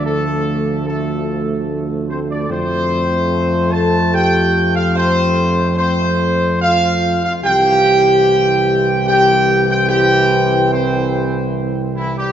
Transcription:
X:1
M:3/4
L:1/16
Q:1/4=73
K:F
V:1 name="Trumpet section"
A4 A4 z2 c d | c6 a2 g3 f | c4 c4 f3 f | g8 g3 g |
g4 c4 z2 E G |]
V:2 name="French horn section"
A,4 A,4 z2 C D | C6 A2 G3 F | C4 C4 F3 F | G8 G3 G |
G4 C4 z2 E, G, |]
V:3 name="Trombone section" clef=bass
[F,A,]12 | [F,A,]12- | [F,A,]12 | [E,C]12- |
[E,C]12 |]
V:4 name="Tuba" clef=bass
D,,12 | F,,12- | F,,12 | C,,12- |
C,,12 |]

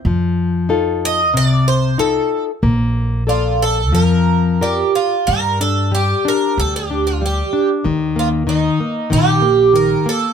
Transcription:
X:1
M:4/4
L:1/16
Q:1/4=94
K:Bb
V:1 name="Twelve-string acoustic guitar"
z6 e2 d2 c2 A3 z | z4 F2 A2 B4 G2 F2 | [K:Gm] B2 A2 G2 B2 A G2 F G3 z | z2 F2 E4 G4 B2 A2 |]
V:2 name="Nylon-string guitar"
F,4 [EFA]4 C,4 [EFA]4 | B,4 [B,Ad]4 F,4 [FBd]4 | [K:Gm] G,2 D2 G,2 D2 G,2 D2 G,2 D2 | E,2 B,2 E,2 B,2 E,2 B,2 E,2 B,2 |]
V:3 name="Upright bass" clef=bass
F,,8 C,,8 | B,,,8 F,,8 | [K:Gm] G,,8 D,,8 | E,,8 B,,,8 |]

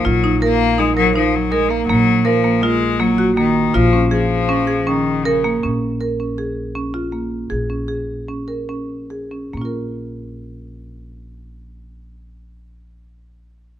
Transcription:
X:1
M:5/4
L:1/8
Q:1/4=158
K:Bbm
V:1 name="Marimba"
F E B2 E B E2 B B, | B,2 B B, F2 B, G B,2 | F D A2 D A D2 B B, | D2 B D A2 D F B,2 |
A D A2 D B D2 A D | [B,DFB]8- [B,DFB]2- | [B,DFB]8- [B,DFB]2 |]
V:2 name="Cello" clef=bass
G,2 B,2 A, G, F, G, A, B, | G,2 F,2 A,2 G,2 E,2 | F,2 F,4 E,2 D,2 | z8 z2 |
z8 z2 | z8 z2 | z8 z2 |]
V:3 name="Upright bass" clef=bass
B,,,8- B,,,2 | B,,,8- B,,,2 | B,,,8- B,,,2 | B,,,8- B,,,2 |
B,,,8- B,,,2 | B,,,8- B,,,2- | B,,,8- B,,,2 |]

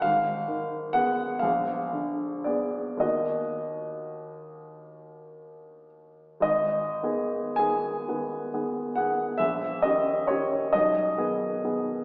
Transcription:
X:1
M:12/8
L:1/8
Q:3/8=41
K:Ebm
V:1 name="Grand piano"
f2 g f2 =d e4- e z | [K:G#m] d2 g3 f e d c d3 |]
V:2 name="Grand piano"
A,,, E, [CA] B,,, =D, [CA] [E,,E,B,G]6 | [K:G#m] G,,, [D,B,G] [D,B,G] [D,B,G] [D,B,G] [D,B,G] A,,, [D,C=G] [D,CG] B,,, [D,B,^G] [D,B,G] |]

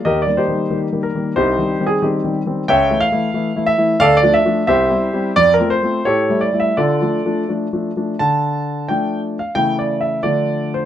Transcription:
X:1
M:2/4
L:1/16
Q:1/4=89
K:Cm
V:1 name="Grand piano"
[GBe] d [EGc]4 B2 | [EGc]3 A [CEG]2 z2 | [K:Dm] [^ceg]2 f4 e2 | [Adf] d e2 [Gce]4 |
d B c2 [GA^c]2 d e | [FAd]4 z4 | a4 g3 f | (3g2 d2 e2 d3 c |]
V:2 name="Grand piano"
(3E,,2 [E,G,B,]2 [E,G,B,]2 (3[E,G,B,]2 [E,G,B,]2 [E,G,B,]2 | (3C,,2 [E,G,C]2 [E,G,C]2 (3[E,G,]2 [E,G,C]2 [E,G,C]2 | [K:Dm] (3^C,,2 [E,A,E]2 [E,A,E]2 (3[E,A,E]2 [E,A,E]2 [E,A,E]2 | (3D,,2 [F,A,D]2 [F,A,D]2 (3C,,2 [G,CE]2 [G,CE]2 |
(3F,,2 [A,CF]2 [A,CF]2 (3A,,2 [G,A,E]2 [G,A,E]2 | (3D,2 [F,A,D]2 [F,A,D]2 (3[F,A,D]2 [F,A,D]2 [F,A,D]2 | D,4 [F,A,D]4 | [^C,E,A,E]4 [D,F,A,D]4 |]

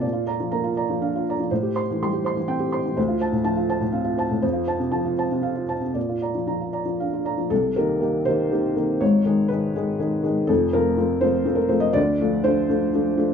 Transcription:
X:1
M:3/4
L:1/16
Q:1/4=122
K:Cdor
V:1 name="Felt piano"
d F [db] F, b F [db] F, f F [db] F, | c G [cc'] =E, c' G [cc'] E, g G [cc'] E, | c F [ca] A,, a F [ca] A,, f F [ca] A,, | c F [ca] C, a F [ca] C, f F [ca] C, |
d F [db] F, b F [db] F, f F [db] F, | A2 B4 c6 | _d4 _c6 z2 | A2 B4 c3 B c e |
d4 c6 z2 |]
V:2 name="Felt piano" clef=bass
B,,4 B,4 D4 | A,,4 G,4 C4 | D,,4 F,4 C4 | F,,4 F,4 C4 |
B,,4 F,4 D4 | [C,,C,]2 [E,B,G]2 [E,B,G]2 [E,B,G]2 [E,B,G]2 [E,B,G]2 | [_A,,,_A,,]2 [E,_A,_A]2 [E,A,A]2 [E,A,A]2 [E,A,A]2 [E,A,A]2 | [F,,,F,,]2 [F,A,C]2 [F,A,C]2 [F,A,C]2 [F,A,C]2 [F,A,C]2 |
[D,,D,]2 [F,A,D]2 [F,A,D]2 [F,A,D]2 [F,A,D]2 [F,A,D]2 |]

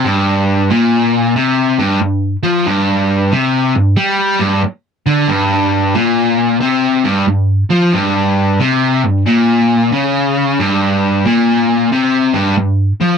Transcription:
X:1
M:4/4
L:1/8
Q:"Swing" 1/4=91
K:Gm
V:1 name="Overdriven electric guitar" clef=bass
G,,2 B,,2 C, G,, G,, F, | G,,2 C, G,, G, G,, z D, | G,,2 B,,2 C, G,, G,, F, | G,,2 C, G,, B,,2 ^C,2 |
G,,2 B,,2 C, G,, G,, F, |]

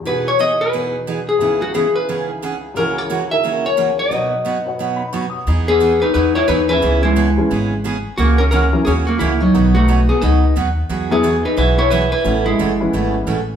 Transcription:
X:1
M:4/4
L:1/16
Q:"Swing" 1/4=177
K:E
V:1 name="Hollow-body jazz guitar"
B2 c2 d2 B8 G2- | G2 F2 G2 B4 z6 | ^A2 c4 e4 c4 d2- | d12 z4 |
z2 [B,G]4 [DB]2 [DB]2 [Ec]2 [DB]2 [EB]2- | [EB]2 [G,E]12 z2 | [^A,F]2 [C^A]2 [CA]4 [CG]2 [A,F]2 [A,E]2 [F,D]2- | [F,D]2 [A,F]4 [B,G]2 [DB]4 z4 |
z2 [B,G]4 [DB]2 [EB]2 [Ec]2 [EB]2 [EB]2- | [EB]2 [G,E]12 z2 |]
V:2 name="Honky-tonk piano"
z16 | z16 | z16 | z8 z2 b2 c'2 d'2- |
d' z12 z3 | z16 | z16 | z16 |
z16 | z16 |]
V:3 name="Honky-tonk piano"
[E,,B,,DFG]16 | [C,,C,DEB]16 | [C,,C,E,G^A]6 [D,FA]8- [D,FA]2 | [B,,F,DBf]6 [B,Fcf]8- [B,Fcf]2 |
z12 z2 [E,G,B,C]2- | [E,G,B,C]4 z2 [E,G,B,C]2 z8 | z6 [E,F,^A,C]2 z8 | [D,F,B,D]8- [D,F,B,D]2 z6 |
z2 [F,G,B,E]2 z12 | [E,A,B,C]2 z4 [E,B,C]6 z4 |]
V:4 name="Steel-string acoustic guitar"
[E,B,DG]2 z2 [E,B,DG] z3 [E,B,DG]2 z2 [E,B,DG] z3 | [C,E,B,CG]2 z2 [C,E,B,CG] z3 [C,E,B,CG]2 z2 [C,E,B,CG] z3 | [C,E,^A,CF]2 z2 [C,E,A,CF] z3 [C,E,A,CF]2 z2 [C,E,A,CF] z3 | [B,,F,B,DF]2 z2 [B,,F,B,DF] z3 [B,,F,B,DF]2 z2 [B,,F,B,DF] z3 |
[E,B,DG]2 z2 [E,B,DG] z3 [E,B,DG]2 z2 [E,B,DG] z3 | [C,E,B,CG]2 z2 [C,E,B,CG] z3 [C,E,B,CG]2 z2 [C,E,B,CG] z3 | [C,E,^A,CF]2 z2 [C,E,A,CF] z3 [C,E,A,CF]2 z2 [C,E,A,CF] z3 | [B,,F,B,DF]2 z2 [B,,F,B,DF] z3 [B,,F,B,DF]2 z2 [B,,F,B,DF] z3 |
[E,F,B,FG]2 z2 [E,F,B,FG] z3 [E,F,B,FG]2 z2 [E,F,B,FG] z3 | [B,,E,A,CA]2 z2 [B,,E,A,CA] z3 [B,,E,A,CA]2 z2 [B,,E,A,CA] z3 |]
V:5 name="Upright bass" clef=bass
z16 | z16 | z16 | z16 |
E,,8 E,,4 D,,4 | C,,8 G,,,8 | C,,8 D,,4 C,,4 | B,,,8 C,,4 D,,4 |
E,,8 B,,,8 | A,,,4 F,,,4 G,,,4 A,,,4 |]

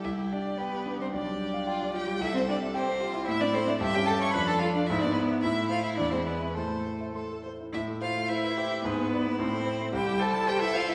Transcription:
X:1
M:2/4
L:1/16
Q:1/4=110
K:C
V:1 name="Violin"
e2 d2 B3 c | d6 g2 | e c d2 c4 | [K:Am] e d c d e g a ^c' |
b a f d e d B2 | e2 f e d c B2 | A4 z4 | e2 f2 e4 |
B4 c4 | g2 a2 g e f e |]
V:2 name="Violin"
G8 | G4 F2 G2 | A4 G2 F2 | [K:Am] E4 G4 |
D4 E4 | E8 | c4 A2 c2 | z4 E2 G2 |
^G2 E6 | E4 A4 |]
V:3 name="Grand piano"
C,, G, G d g G D G, | B,,, G, G f g G F G, | C,, C G e g c G E | [K:Am] A,, C A e G,, ^C A e |
F,, D A f ^G,, B, d e | A,, A, c e E,, ^G, d e | A,, A, c e c' A c E | A,, A, c A, c B c E |
^G,, B, d B, A,, A, c A, | C,, G, c G, c B c E |]
V:4 name="Cello"
E2 D2 B,3 C | D6 G2 | E C D2 C4 | [K:Am] E D C D E G A ^c |
B A F D E D B,2 | E2 F E D C B,2 | A,4 z4 | E2 F2 E4 |
B,4 C4 | G2 A2 G E F E |]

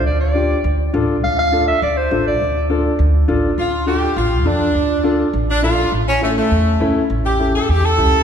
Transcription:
X:1
M:4/4
L:1/8
Q:1/4=204
K:Dm
V:1 name="Clarinet"
d d4 z3 | f f2 e d c2 d- | d2 z6 | z8 |
z8 | z8 | z8 |]
V:2 name="Saxophone section"
z8 | z8 | z8 | F2 G2 F2 D2- |
D4 z D F2 | z ^C A, A,4 z | z G2 A G A3 |]
V:3 name="Upright piano"
z2 [DFG] z3 [DFA] z | z2 [DFA] z3 [DFA] z | z2 [DFA] z3 [DFA] z | z2 [DFA] z3 [DFA] z |
z2 [DFA] z3 [DFA] z | z2 [^CEA] z3 [CEA] z | z2 [^CEA] z3 [CEG] z |]
V:4 name="Upright bass" clef=bass
D,,4 D,,2 A,,,2 | D,,4 D,,2 A,,,2 | D,,4 D,,2 A,,,2 | D,,4 A,,,2 F,,2 |
D,,4 A,,,2 B,,,2 | A,,,4 E,,2 ^C,,2 | A,,,4 E,,2 ^C,,2 |]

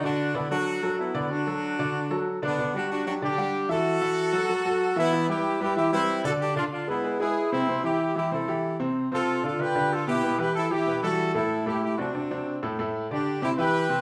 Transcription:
X:1
M:4/4
L:1/8
Q:1/4=188
K:G
V:1 name="Horn section"
[DF]2 [B,E] [DF]3 [B,E]2 | [DF]6 z [B,D]- | [B,D] [DF] [DF] [DF] [DG]3 [FA]- | [FA]6- [FA] [B,E]- |
[B,E] [EG]2 [EG] [EG] [CE]2 [FA] | [DG] [D=F] [DF] [B,E]2 [E^G]2 [CE]- | [CE] [EG]2 [EG] [EA]3 z | z [=FA]2 [FA] [GB]2 [FA] [EG]- |
[EG] [GB] [EA] [EG]2 [FA]2 [EA]- | [EA] [EG] [EG] [DF]4 z | z2 [DG]2 [EG] [GB]3 |]
V:2 name="Grand piano"
[D,Dd]2 [D,Dd] [F,FA]2 [F,FA]2 [D,Dd]- | [D,Dd] [F,FA]2 [D,Dd]2 [F,FA]2 [D,Dd] | [D,Dd] [G,FG]2 [F,FG] [D,Dd] [G,Gf]2 [E,Ee]- | [E,Ee] [E,Ee]2 [F,FA] [F,FA] [F,FA]2 [E,Ee] |
[E,Ee] [G,GB]2 [G,GB] [E,Ee] [G,GB]2 [D,Dd]- | [D,Dd] [D,Dd]2 [_A,_AB] [^G,^GB] [G,GB]2 [C,Cc] | [C,Cc] [E,EG]2 [E,EG] [C,Cc] [E,EG]2 [C,Cc]- | [C,Cc] [C,Cc]2 [D,D=F] [D,DF] [D,DF]2 [B,,B,B] |
[B,,B,B] [E,EG]2 [E,EG] [B,,B,B] [E,G,E]2 [A,,A,A]- | [A,,A,A] [A,,A,A]2 [C,CD] [C,CD] [C,CD]2 [A,,A,A] | [A,,A,A]2 [D,Dd]2 [C,Cc] [E,Ee]2 [C,Cc] |]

